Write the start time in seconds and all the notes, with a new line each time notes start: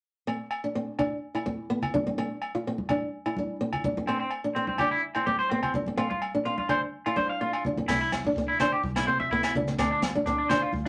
0.27 C4, low agogo
0.51 low agogo
0.64 D4
0.75 C4
0.99 D4, low conga, low agogo
1.35 E4, low agogo
1.46 C4, high conga
1.70 B3
1.82 low conga, low agogo
1.94 D4, high conga, low conga
2.07 C4, high conga
2.18 C4, low agogo
2.42 low agogo
2.55 F4
2.67 C4
2.78 high conga
2.89 D4, low conga, low agogo
3.26 E4, low agogo
3.37 D4, high conga
3.61 C4
3.73 low conga, low agogo
3.84 D4, high conga, low conga
3.97 C4, high conga
4.07 C4, low agogo
4.20 C4
4.31 low agogo
4.44 D4
4.55 C4
4.67 C4, high conga
4.78 D4 G4, low conga, low agogo
4.91 E4
5.15 C4 E4, low agogo
5.26 C4 G4, high conga
5.39 C5
5.50 B3 C4
5.63 C4, low conga, low agogo
5.74 D4, high conga, low conga
5.86 C4, high conga
5.97 C4 F4, low agogo
6.10 F4, high conga
6.22 low agogo
6.35 D4
6.45 C4 F4
6.58 F4, high conga
6.69 D4 C5, low conga, low agogo
7.06 E4 F4, low agogo
7.16 D4 C5, high conga
7.29 F5
7.41 C4 F4
7.53 F4, low agogo
7.65 D4, high conga, low conga
7.77 C4, high conga
7.88 C2 C4 E4, kick, snare, crash, low agogo
8.01 E4
8.12 snare, high conga, low agogo
8.25 D4, high conga
8.36 C4, kick
8.48 E4
8.59 D4 C5, snare, low conga, low agogo
8.72 G4
8.84 C2, kick, high conga
8.96 E4, snare, low agogo
9.07 C3 C4 C5
9.20 E5, high conga
9.31 B3 E4, kick
9.43 E4, snare, low agogo
9.55 C#2 D4, low conga
9.67 C4, snare
9.78 D2 C4 D4, kick, snare, low agogo
9.91 D4
10.02 snare, high conga, low agogo
10.15 D4, high conga
10.26 C4 D4, kick, snare
10.38 D4
10.49 D4 C5, snare, low conga, low agogo
10.62 F4
10.73 D2, kick, high conga